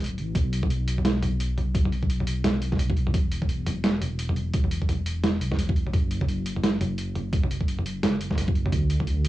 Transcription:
0.00 detuned saw bass D1, closed hi-hat
0.04 closed hi-hat
0.06 closed hi-hat
0.18 detuned saw bass A1, closed hi-hat
0.35 detuned saw bass B1, kick, closed hi-hat, mid tom
0.53 closed hi-hat
0.63 kick, mid tom
0.70 closed hi-hat
0.88 closed hi-hat
0.98 mid tom
1.05 snare, closed hi-hat
1.23 closed hi-hat, mid tom
1.40 closed hi-hat
1.58 closed hi-hat, mid tom
1.75 detuned saw bass B1, kick, closed hi-hat
1.85 mid tom
1.92 closed hi-hat
2.03 kick
2.10 closed hi-hat
2.20 mid tom
2.27 closed hi-hat
2.44 snare, closed hi-hat, mid tom
2.62 closed hi-hat
2.72 kick, snare
2.77 snare, closed hi-hat, mid tom
2.90 kick
2.97 closed hi-hat
3.07 mid tom
3.14 detuned saw bass E1, kick, closed hi-hat
3.32 closed hi-hat
3.42 kick, mid tom
3.49 closed hi-hat
3.67 closed hi-hat, mid tom
3.84 snare, closed hi-hat
4.02 closed hi-hat, mid tom
4.19 closed hi-hat
4.29 mid tom
4.36 closed hi-hat
4.53 detuned saw bass E1, kick, closed hi-hat
4.64 mid tom
4.71 closed hi-hat
4.82 kick
4.89 closed hi-hat, mid tom
5.06 closed hi-hat
5.24 snare, closed hi-hat, mid tom
5.41 detuned saw bass B1, closed hi-hat
5.51 detuned saw bass E1, kick, snare, mid tom
5.59 closed hi-hat
5.69 kick
5.76 closed hi-hat
5.86 mid tom
5.93 detuned saw bass F#1, kick, closed hi-hat, mid tom
6.11 closed hi-hat
6.21 kick, mid tom
6.28 closed hi-hat
6.46 closed hi-hat
6.56 mid tom
6.63 snare, closed hi-hat
6.81 closed hi-hat, mid tom
6.98 closed hi-hat
7.15 closed hi-hat, mid tom
7.33 detuned saw bass F#1, kick, closed hi-hat
7.43 mid tom
7.51 closed hi-hat
7.61 kick
7.68 closed hi-hat
7.78 mid tom
7.86 closed hi-hat
8.03 snare, closed hi-hat, mid tom
8.21 closed hi-hat
8.30 kick, snare
8.35 snare, closed hi-hat, mid tom
8.41 snare
8.48 kick
8.55 closed hi-hat
8.66 mid tom
8.72 detuned saw bass D2, kick, closed hi-hat
8.90 closed hi-hat
9.00 kick, mid tom
9.07 closed hi-hat
9.25 closed hi-hat

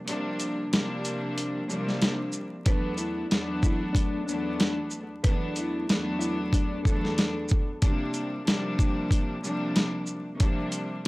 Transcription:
0.07 string section C3 F3 G3 A#3 D4, closed hi-hat
0.40 closed hi-hat, shaker
0.72 string section C3 F3 G3 A#3 D4, snare, closed hi-hat
1.05 closed hi-hat, shaker
1.38 closed hi-hat
1.69 string section C3 F3 G3 A#3 D4, shaker
1.89 snare
2.02 snare, closed hi-hat
2.32 shaker
2.66 string section E2 F#3 A3 B3 D4, clean electric guitar B4, kick, closed hi-hat
2.97 clean electric guitar E4, closed hi-hat, shaker
3.31 string section E2 F#3 A3 B3 D4, snare, closed hi-hat
3.63 clean electric guitar E4, kick, shaker
3.93 clean electric guitar D4, kick, closed hi-hat
4.26 string section E2 F#3 A3 B3 D4, clean electric guitar D4, shaker
4.60 snare, closed hi-hat
4.91 shaker
5.24 string section E2 F#3 A3 B3 D4, clean electric guitar B4, kick, closed hi-hat
5.56 clean electric guitar E4, closed hi-hat, shaker
5.88 string section E2 F#3 A3 B3 D4, snare, closed hi-hat
6.19 clean electric guitar E4, shaker
6.53 clean electric guitar D4, kick, closed hi-hat
6.83 string section E2 F#3 A3 B3, clean electric guitar A4, kick, shaker
6.87 string section D4
7.05 snare
7.18 snare, closed hi-hat
7.49 kick, shaker
7.82 string section C3 F3 G3 A#3 D4, kick, closed hi-hat
8.14 closed hi-hat, shaker
8.45 string section C3 F3 G3 A#3 D4, snare, closed hi-hat
8.79 kick, shaker
9.11 kick, closed hi-hat
9.43 string section C3 F3 G3 A#3 D4, shaker
9.76 snare, closed hi-hat
10.07 shaker
10.39 string section C3 F3 G3 A#3 D4, kick, closed hi-hat
10.72 closed hi-hat, shaker

